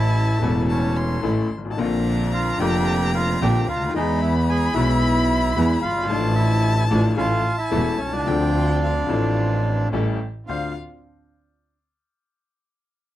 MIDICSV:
0, 0, Header, 1, 6, 480
1, 0, Start_track
1, 0, Key_signature, -1, "minor"
1, 0, Tempo, 541516
1, 1584, Time_signature, 4, 2, 24, 8
1, 7329, Tempo, 547445
1, 11609, End_track
2, 0, Start_track
2, 0, Title_t, "Violin"
2, 0, Program_c, 0, 40
2, 0, Note_on_c, 0, 81, 110
2, 577, Note_off_c, 0, 81, 0
2, 616, Note_on_c, 0, 81, 86
2, 855, Note_on_c, 0, 84, 87
2, 868, Note_off_c, 0, 81, 0
2, 1341, Note_off_c, 0, 84, 0
2, 1518, Note_on_c, 0, 81, 71
2, 1584, Note_on_c, 0, 82, 113
2, 1597, Note_off_c, 0, 81, 0
2, 3505, Note_off_c, 0, 82, 0
2, 3512, Note_on_c, 0, 83, 125
2, 5379, Note_off_c, 0, 83, 0
2, 5416, Note_on_c, 0, 81, 127
2, 6336, Note_off_c, 0, 81, 0
2, 6374, Note_on_c, 0, 81, 104
2, 7335, Note_on_c, 0, 79, 96
2, 7348, Note_off_c, 0, 81, 0
2, 7811, Note_off_c, 0, 79, 0
2, 7824, Note_on_c, 0, 77, 73
2, 8265, Note_off_c, 0, 77, 0
2, 9273, Note_on_c, 0, 77, 74
2, 9493, Note_off_c, 0, 77, 0
2, 11609, End_track
3, 0, Start_track
3, 0, Title_t, "Bandoneon"
3, 0, Program_c, 1, 23
3, 0, Note_on_c, 1, 64, 84
3, 0, Note_on_c, 1, 76, 108
3, 341, Note_off_c, 1, 64, 0
3, 370, Note_off_c, 1, 76, 0
3, 378, Note_on_c, 1, 64, 66
3, 383, Note_on_c, 1, 76, 89
3, 485, Note_off_c, 1, 64, 0
3, 489, Note_off_c, 1, 76, 0
3, 619, Note_on_c, 1, 61, 59
3, 627, Note_on_c, 1, 73, 79
3, 1068, Note_off_c, 1, 61, 0
3, 1072, Note_off_c, 1, 73, 0
3, 2064, Note_on_c, 1, 77, 96
3, 2071, Note_on_c, 1, 65, 74
3, 2289, Note_off_c, 1, 77, 0
3, 2294, Note_off_c, 1, 65, 0
3, 2305, Note_on_c, 1, 79, 105
3, 2310, Note_on_c, 1, 67, 76
3, 2756, Note_off_c, 1, 67, 0
3, 2788, Note_on_c, 1, 77, 96
3, 2798, Note_on_c, 1, 65, 78
3, 2801, Note_off_c, 1, 79, 0
3, 3011, Note_off_c, 1, 77, 0
3, 3017, Note_off_c, 1, 65, 0
3, 3031, Note_on_c, 1, 79, 102
3, 3042, Note_on_c, 1, 67, 79
3, 3252, Note_off_c, 1, 79, 0
3, 3258, Note_off_c, 1, 67, 0
3, 3266, Note_on_c, 1, 77, 98
3, 3276, Note_on_c, 1, 65, 82
3, 3488, Note_off_c, 1, 77, 0
3, 3493, Note_off_c, 1, 65, 0
3, 3504, Note_on_c, 1, 75, 94
3, 3518, Note_on_c, 1, 63, 78
3, 3726, Note_off_c, 1, 75, 0
3, 3733, Note_off_c, 1, 63, 0
3, 3738, Note_on_c, 1, 76, 102
3, 3754, Note_on_c, 1, 64, 79
3, 3847, Note_off_c, 1, 76, 0
3, 3858, Note_off_c, 1, 64, 0
3, 3980, Note_on_c, 1, 80, 107
3, 3996, Note_on_c, 1, 68, 86
3, 4202, Note_off_c, 1, 80, 0
3, 4206, Note_on_c, 1, 76, 112
3, 4210, Note_off_c, 1, 68, 0
3, 4229, Note_on_c, 1, 64, 85
3, 5132, Note_off_c, 1, 76, 0
3, 5143, Note_off_c, 1, 64, 0
3, 5158, Note_on_c, 1, 77, 111
3, 5183, Note_on_c, 1, 65, 82
3, 5608, Note_off_c, 1, 77, 0
3, 5621, Note_off_c, 1, 65, 0
3, 5632, Note_on_c, 1, 76, 107
3, 5652, Note_on_c, 1, 64, 84
3, 5974, Note_off_c, 1, 76, 0
3, 5985, Note_off_c, 1, 64, 0
3, 5999, Note_on_c, 1, 76, 104
3, 6019, Note_on_c, 1, 64, 82
3, 6055, Note_off_c, 1, 76, 0
3, 6071, Note_off_c, 1, 64, 0
3, 6120, Note_on_c, 1, 74, 93
3, 6141, Note_on_c, 1, 62, 65
3, 6230, Note_off_c, 1, 74, 0
3, 6247, Note_off_c, 1, 62, 0
3, 6355, Note_on_c, 1, 77, 104
3, 6375, Note_on_c, 1, 65, 82
3, 6697, Note_off_c, 1, 77, 0
3, 6708, Note_off_c, 1, 65, 0
3, 6718, Note_on_c, 1, 76, 99
3, 6732, Note_on_c, 1, 64, 78
3, 7066, Note_on_c, 1, 73, 81
3, 7067, Note_off_c, 1, 64, 0
3, 7086, Note_on_c, 1, 61, 70
3, 7097, Note_off_c, 1, 76, 0
3, 7198, Note_on_c, 1, 74, 97
3, 7200, Note_off_c, 1, 61, 0
3, 7203, Note_off_c, 1, 73, 0
3, 7222, Note_on_c, 1, 62, 80
3, 8737, Note_off_c, 1, 74, 0
3, 8749, Note_off_c, 1, 62, 0
3, 9266, Note_on_c, 1, 77, 85
3, 9489, Note_off_c, 1, 77, 0
3, 11609, End_track
4, 0, Start_track
4, 0, Title_t, "String section"
4, 0, Program_c, 2, 48
4, 0, Note_on_c, 2, 57, 100
4, 0, Note_on_c, 2, 61, 88
4, 0, Note_on_c, 2, 64, 99
4, 334, Note_off_c, 2, 57, 0
4, 336, Note_off_c, 2, 61, 0
4, 337, Note_off_c, 2, 64, 0
4, 366, Note_on_c, 2, 57, 87
4, 368, Note_on_c, 2, 61, 81
4, 371, Note_on_c, 2, 64, 95
4, 1060, Note_off_c, 2, 57, 0
4, 1061, Note_off_c, 2, 61, 0
4, 1062, Note_off_c, 2, 64, 0
4, 1094, Note_on_c, 2, 61, 74
4, 1095, Note_on_c, 2, 57, 82
4, 1099, Note_on_c, 2, 64, 86
4, 1301, Note_off_c, 2, 57, 0
4, 1301, Note_off_c, 2, 61, 0
4, 1303, Note_off_c, 2, 64, 0
4, 1573, Note_on_c, 2, 60, 79
4, 1575, Note_on_c, 2, 58, 91
4, 1575, Note_on_c, 2, 62, 101
4, 2267, Note_off_c, 2, 60, 0
4, 2268, Note_off_c, 2, 58, 0
4, 2268, Note_off_c, 2, 62, 0
4, 2301, Note_on_c, 2, 60, 80
4, 2302, Note_on_c, 2, 58, 89
4, 2304, Note_on_c, 2, 62, 104
4, 2989, Note_off_c, 2, 58, 0
4, 2989, Note_off_c, 2, 60, 0
4, 2990, Note_off_c, 2, 62, 0
4, 3014, Note_on_c, 2, 60, 79
4, 3015, Note_on_c, 2, 58, 84
4, 3019, Note_on_c, 2, 62, 96
4, 3222, Note_off_c, 2, 58, 0
4, 3222, Note_off_c, 2, 60, 0
4, 3224, Note_off_c, 2, 62, 0
4, 3500, Note_on_c, 2, 56, 94
4, 3500, Note_on_c, 2, 59, 90
4, 3503, Note_on_c, 2, 64, 101
4, 4181, Note_off_c, 2, 56, 0
4, 4181, Note_off_c, 2, 59, 0
4, 4182, Note_off_c, 2, 64, 0
4, 4219, Note_on_c, 2, 56, 89
4, 4219, Note_on_c, 2, 59, 80
4, 4222, Note_on_c, 2, 64, 95
4, 4899, Note_off_c, 2, 56, 0
4, 4900, Note_off_c, 2, 59, 0
4, 4901, Note_off_c, 2, 64, 0
4, 4930, Note_on_c, 2, 56, 91
4, 4932, Note_on_c, 2, 59, 80
4, 4936, Note_on_c, 2, 64, 95
4, 5133, Note_off_c, 2, 56, 0
4, 5134, Note_off_c, 2, 59, 0
4, 5136, Note_off_c, 2, 64, 0
4, 5406, Note_on_c, 2, 57, 92
4, 5411, Note_on_c, 2, 62, 89
4, 5413, Note_on_c, 2, 53, 105
4, 6090, Note_off_c, 2, 57, 0
4, 6093, Note_off_c, 2, 53, 0
4, 6093, Note_off_c, 2, 62, 0
4, 6125, Note_on_c, 2, 57, 86
4, 6128, Note_on_c, 2, 62, 77
4, 6131, Note_on_c, 2, 65, 86
4, 6329, Note_off_c, 2, 57, 0
4, 6330, Note_off_c, 2, 62, 0
4, 6332, Note_off_c, 2, 65, 0
4, 6367, Note_on_c, 2, 57, 89
4, 6369, Note_on_c, 2, 61, 82
4, 6371, Note_on_c, 2, 64, 93
4, 6571, Note_off_c, 2, 57, 0
4, 6571, Note_off_c, 2, 61, 0
4, 6572, Note_off_c, 2, 64, 0
4, 6845, Note_on_c, 2, 57, 82
4, 6847, Note_on_c, 2, 61, 79
4, 6850, Note_on_c, 2, 64, 88
4, 7050, Note_off_c, 2, 57, 0
4, 7051, Note_off_c, 2, 61, 0
4, 7053, Note_off_c, 2, 64, 0
4, 7332, Note_on_c, 2, 60, 98
4, 7332, Note_on_c, 2, 62, 86
4, 7334, Note_on_c, 2, 65, 107
4, 8014, Note_off_c, 2, 60, 0
4, 8014, Note_off_c, 2, 62, 0
4, 8015, Note_off_c, 2, 65, 0
4, 8047, Note_on_c, 2, 60, 85
4, 8049, Note_on_c, 2, 62, 74
4, 8052, Note_on_c, 2, 65, 99
4, 8741, Note_off_c, 2, 60, 0
4, 8742, Note_off_c, 2, 62, 0
4, 8743, Note_off_c, 2, 65, 0
4, 8775, Note_on_c, 2, 57, 80
4, 8775, Note_on_c, 2, 61, 77
4, 8781, Note_on_c, 2, 67, 91
4, 8983, Note_off_c, 2, 57, 0
4, 8984, Note_off_c, 2, 61, 0
4, 8986, Note_off_c, 2, 67, 0
4, 9258, Note_on_c, 2, 62, 57
4, 9259, Note_on_c, 2, 60, 56
4, 9259, Note_on_c, 2, 65, 64
4, 9462, Note_off_c, 2, 60, 0
4, 9462, Note_off_c, 2, 62, 0
4, 9463, Note_off_c, 2, 65, 0
4, 11609, End_track
5, 0, Start_track
5, 0, Title_t, "Upright piano"
5, 0, Program_c, 3, 0
5, 0, Note_on_c, 3, 33, 86
5, 0, Note_on_c, 3, 45, 94
5, 0, Note_on_c, 3, 52, 84
5, 0, Note_on_c, 3, 57, 74
5, 0, Note_on_c, 3, 61, 72
5, 0, Note_on_c, 3, 69, 89
5, 321, Note_off_c, 3, 52, 0
5, 326, Note_off_c, 3, 57, 0
5, 330, Note_off_c, 3, 33, 0
5, 331, Note_off_c, 3, 45, 0
5, 332, Note_off_c, 3, 61, 0
5, 339, Note_off_c, 3, 69, 0
5, 351, Note_on_c, 3, 52, 77
5, 369, Note_on_c, 3, 57, 75
5, 371, Note_on_c, 3, 28, 91
5, 375, Note_on_c, 3, 40, 88
5, 375, Note_on_c, 3, 61, 70
5, 391, Note_on_c, 3, 69, 93
5, 1053, Note_off_c, 3, 52, 0
5, 1061, Note_off_c, 3, 57, 0
5, 1063, Note_off_c, 3, 28, 0
5, 1064, Note_off_c, 3, 61, 0
5, 1065, Note_off_c, 3, 40, 0
5, 1072, Note_off_c, 3, 69, 0
5, 1087, Note_on_c, 3, 52, 74
5, 1089, Note_on_c, 3, 33, 88
5, 1094, Note_on_c, 3, 45, 88
5, 1094, Note_on_c, 3, 61, 64
5, 1094, Note_on_c, 3, 69, 81
5, 1096, Note_on_c, 3, 57, 63
5, 1297, Note_off_c, 3, 52, 0
5, 1298, Note_off_c, 3, 33, 0
5, 1300, Note_off_c, 3, 45, 0
5, 1300, Note_off_c, 3, 61, 0
5, 1300, Note_off_c, 3, 69, 0
5, 1301, Note_off_c, 3, 57, 0
5, 1396, Note_on_c, 3, 31, 56
5, 1460, Note_off_c, 3, 31, 0
5, 1462, Note_on_c, 3, 32, 65
5, 1509, Note_on_c, 3, 33, 73
5, 1523, Note_off_c, 3, 32, 0
5, 1563, Note_on_c, 3, 50, 74
5, 1572, Note_on_c, 3, 58, 73
5, 1577, Note_off_c, 3, 33, 0
5, 1579, Note_on_c, 3, 34, 86
5, 1582, Note_on_c, 3, 46, 89
5, 1586, Note_on_c, 3, 60, 68
5, 1600, Note_on_c, 3, 65, 85
5, 2262, Note_off_c, 3, 50, 0
5, 2266, Note_off_c, 3, 58, 0
5, 2270, Note_off_c, 3, 34, 0
5, 2271, Note_off_c, 3, 46, 0
5, 2273, Note_off_c, 3, 60, 0
5, 2280, Note_off_c, 3, 65, 0
5, 2286, Note_on_c, 3, 50, 75
5, 2300, Note_on_c, 3, 41, 100
5, 2300, Note_on_c, 3, 58, 75
5, 2301, Note_on_c, 3, 29, 94
5, 2311, Note_on_c, 3, 60, 77
5, 2319, Note_on_c, 3, 65, 94
5, 2981, Note_off_c, 3, 50, 0
5, 2988, Note_off_c, 3, 29, 0
5, 2988, Note_off_c, 3, 41, 0
5, 2988, Note_off_c, 3, 58, 0
5, 2994, Note_off_c, 3, 60, 0
5, 2998, Note_off_c, 3, 65, 0
5, 3024, Note_on_c, 3, 46, 92
5, 3024, Note_on_c, 3, 65, 80
5, 3025, Note_on_c, 3, 50, 77
5, 3026, Note_on_c, 3, 34, 82
5, 3027, Note_on_c, 3, 60, 72
5, 3028, Note_on_c, 3, 58, 66
5, 3227, Note_off_c, 3, 46, 0
5, 3227, Note_off_c, 3, 50, 0
5, 3227, Note_off_c, 3, 65, 0
5, 3228, Note_off_c, 3, 34, 0
5, 3228, Note_off_c, 3, 60, 0
5, 3229, Note_off_c, 3, 58, 0
5, 3326, Note_on_c, 3, 37, 64
5, 3386, Note_off_c, 3, 37, 0
5, 3391, Note_on_c, 3, 38, 69
5, 3448, Note_off_c, 3, 38, 0
5, 3449, Note_on_c, 3, 39, 82
5, 3495, Note_on_c, 3, 52, 92
5, 3503, Note_on_c, 3, 56, 75
5, 3507, Note_off_c, 3, 39, 0
5, 3513, Note_on_c, 3, 59, 77
5, 3515, Note_on_c, 3, 40, 92
5, 3528, Note_on_c, 3, 68, 85
5, 4182, Note_off_c, 3, 56, 0
5, 4186, Note_off_c, 3, 52, 0
5, 4187, Note_off_c, 3, 59, 0
5, 4188, Note_off_c, 3, 40, 0
5, 4195, Note_off_c, 3, 68, 0
5, 4204, Note_on_c, 3, 52, 80
5, 4214, Note_on_c, 3, 56, 77
5, 4216, Note_on_c, 3, 35, 98
5, 4219, Note_on_c, 3, 47, 95
5, 4225, Note_on_c, 3, 59, 78
5, 4241, Note_on_c, 3, 68, 87
5, 4892, Note_off_c, 3, 52, 0
5, 4897, Note_off_c, 3, 56, 0
5, 4898, Note_off_c, 3, 35, 0
5, 4900, Note_off_c, 3, 47, 0
5, 4903, Note_off_c, 3, 59, 0
5, 4911, Note_off_c, 3, 68, 0
5, 4934, Note_on_c, 3, 52, 94
5, 4938, Note_on_c, 3, 56, 71
5, 4939, Note_on_c, 3, 68, 86
5, 4941, Note_on_c, 3, 40, 93
5, 4942, Note_on_c, 3, 59, 67
5, 5137, Note_off_c, 3, 56, 0
5, 5138, Note_off_c, 3, 40, 0
5, 5138, Note_off_c, 3, 52, 0
5, 5138, Note_off_c, 3, 68, 0
5, 5139, Note_off_c, 3, 59, 0
5, 5239, Note_on_c, 3, 30, 64
5, 5295, Note_off_c, 3, 30, 0
5, 5296, Note_on_c, 3, 31, 67
5, 5349, Note_on_c, 3, 32, 90
5, 5354, Note_off_c, 3, 31, 0
5, 5394, Note_on_c, 3, 53, 77
5, 5405, Note_on_c, 3, 57, 76
5, 5409, Note_on_c, 3, 33, 89
5, 5410, Note_off_c, 3, 32, 0
5, 5412, Note_on_c, 3, 45, 97
5, 5415, Note_on_c, 3, 62, 78
5, 5433, Note_on_c, 3, 69, 88
5, 6084, Note_off_c, 3, 53, 0
5, 6090, Note_off_c, 3, 57, 0
5, 6091, Note_off_c, 3, 33, 0
5, 6093, Note_off_c, 3, 45, 0
5, 6095, Note_off_c, 3, 62, 0
5, 6104, Note_off_c, 3, 69, 0
5, 6122, Note_on_c, 3, 45, 96
5, 6123, Note_on_c, 3, 53, 84
5, 6124, Note_on_c, 3, 57, 77
5, 6124, Note_on_c, 3, 62, 78
5, 6125, Note_on_c, 3, 33, 95
5, 6128, Note_on_c, 3, 69, 92
5, 6327, Note_off_c, 3, 45, 0
5, 6328, Note_off_c, 3, 53, 0
5, 6328, Note_off_c, 3, 57, 0
5, 6328, Note_off_c, 3, 62, 0
5, 6329, Note_off_c, 3, 33, 0
5, 6330, Note_off_c, 3, 69, 0
5, 6353, Note_on_c, 3, 52, 81
5, 6356, Note_on_c, 3, 61, 72
5, 6358, Note_on_c, 3, 57, 79
5, 6360, Note_on_c, 3, 33, 93
5, 6361, Note_on_c, 3, 45, 92
5, 6361, Note_on_c, 3, 69, 94
5, 6563, Note_off_c, 3, 52, 0
5, 6565, Note_off_c, 3, 61, 0
5, 6566, Note_off_c, 3, 57, 0
5, 6567, Note_off_c, 3, 33, 0
5, 6567, Note_off_c, 3, 45, 0
5, 6568, Note_off_c, 3, 69, 0
5, 6835, Note_on_c, 3, 57, 69
5, 6836, Note_on_c, 3, 40, 88
5, 6836, Note_on_c, 3, 52, 81
5, 6840, Note_on_c, 3, 69, 80
5, 6841, Note_on_c, 3, 28, 93
5, 6841, Note_on_c, 3, 61, 72
5, 7045, Note_off_c, 3, 57, 0
5, 7046, Note_off_c, 3, 40, 0
5, 7046, Note_off_c, 3, 52, 0
5, 7048, Note_off_c, 3, 28, 0
5, 7048, Note_off_c, 3, 61, 0
5, 7048, Note_off_c, 3, 69, 0
5, 7146, Note_on_c, 3, 35, 59
5, 7206, Note_on_c, 3, 36, 69
5, 7209, Note_off_c, 3, 35, 0
5, 7265, Note_on_c, 3, 37, 82
5, 7269, Note_off_c, 3, 36, 0
5, 7317, Note_on_c, 3, 53, 80
5, 7328, Note_off_c, 3, 37, 0
5, 7329, Note_on_c, 3, 60, 66
5, 7334, Note_on_c, 3, 50, 90
5, 7337, Note_on_c, 3, 38, 84
5, 7338, Note_on_c, 3, 62, 73
5, 7347, Note_on_c, 3, 69, 80
5, 8006, Note_off_c, 3, 53, 0
5, 8012, Note_off_c, 3, 60, 0
5, 8015, Note_off_c, 3, 50, 0
5, 8016, Note_off_c, 3, 38, 0
5, 8017, Note_off_c, 3, 62, 0
5, 8021, Note_off_c, 3, 69, 0
5, 8030, Note_on_c, 3, 53, 79
5, 8044, Note_on_c, 3, 60, 71
5, 8052, Note_on_c, 3, 33, 89
5, 8052, Note_on_c, 3, 45, 97
5, 8062, Note_on_c, 3, 62, 70
5, 8069, Note_on_c, 3, 69, 89
5, 8732, Note_off_c, 3, 53, 0
5, 8739, Note_off_c, 3, 60, 0
5, 8743, Note_off_c, 3, 33, 0
5, 8743, Note_off_c, 3, 45, 0
5, 8748, Note_off_c, 3, 62, 0
5, 8751, Note_off_c, 3, 69, 0
5, 8784, Note_on_c, 3, 61, 66
5, 8785, Note_on_c, 3, 45, 81
5, 8785, Note_on_c, 3, 55, 73
5, 8785, Note_on_c, 3, 64, 69
5, 8786, Note_on_c, 3, 69, 83
5, 8787, Note_on_c, 3, 33, 83
5, 8988, Note_off_c, 3, 61, 0
5, 8988, Note_off_c, 3, 64, 0
5, 8989, Note_off_c, 3, 33, 0
5, 8989, Note_off_c, 3, 45, 0
5, 8989, Note_off_c, 3, 55, 0
5, 8989, Note_off_c, 3, 69, 0
5, 9272, Note_on_c, 3, 65, 54
5, 9275, Note_on_c, 3, 38, 57
5, 9278, Note_on_c, 3, 62, 55
5, 9279, Note_on_c, 3, 72, 62
5, 9470, Note_off_c, 3, 65, 0
5, 9471, Note_off_c, 3, 38, 0
5, 9473, Note_off_c, 3, 62, 0
5, 9473, Note_off_c, 3, 72, 0
5, 11609, End_track
6, 0, Start_track
6, 0, Title_t, "Double bass"
6, 0, Program_c, 4, 43
6, 0, Note_on_c, 4, 33, 114
6, 328, Note_off_c, 4, 33, 0
6, 357, Note_on_c, 4, 28, 108
6, 1055, Note_off_c, 4, 28, 0
6, 1088, Note_on_c, 4, 33, 89
6, 1297, Note_off_c, 4, 33, 0
6, 1326, Note_on_c, 4, 32, 68
6, 1569, Note_off_c, 4, 32, 0
6, 1574, Note_on_c, 4, 34, 102
6, 2267, Note_off_c, 4, 34, 0
6, 2293, Note_on_c, 4, 29, 111
6, 2985, Note_off_c, 4, 29, 0
6, 3019, Note_on_c, 4, 34, 99
6, 3224, Note_off_c, 4, 34, 0
6, 3264, Note_on_c, 4, 38, 74
6, 3487, Note_off_c, 4, 38, 0
6, 3493, Note_on_c, 4, 40, 112
6, 4177, Note_off_c, 4, 40, 0
6, 4216, Note_on_c, 4, 35, 115
6, 4898, Note_off_c, 4, 35, 0
6, 4934, Note_on_c, 4, 40, 110
6, 5135, Note_off_c, 4, 40, 0
6, 5179, Note_on_c, 4, 31, 77
6, 5406, Note_off_c, 4, 31, 0
6, 5411, Note_on_c, 4, 33, 124
6, 6093, Note_off_c, 4, 33, 0
6, 6124, Note_on_c, 4, 33, 107
6, 6328, Note_off_c, 4, 33, 0
6, 6367, Note_on_c, 4, 33, 106
6, 6570, Note_off_c, 4, 33, 0
6, 6844, Note_on_c, 4, 28, 96
6, 7050, Note_off_c, 4, 28, 0
6, 7087, Note_on_c, 4, 36, 74
6, 7323, Note_off_c, 4, 36, 0
6, 7328, Note_on_c, 4, 38, 111
6, 8012, Note_off_c, 4, 38, 0
6, 8043, Note_on_c, 4, 33, 106
6, 8739, Note_off_c, 4, 33, 0
6, 8779, Note_on_c, 4, 33, 88
6, 8985, Note_off_c, 4, 33, 0
6, 9271, Note_on_c, 4, 38, 62
6, 9469, Note_off_c, 4, 38, 0
6, 11609, End_track
0, 0, End_of_file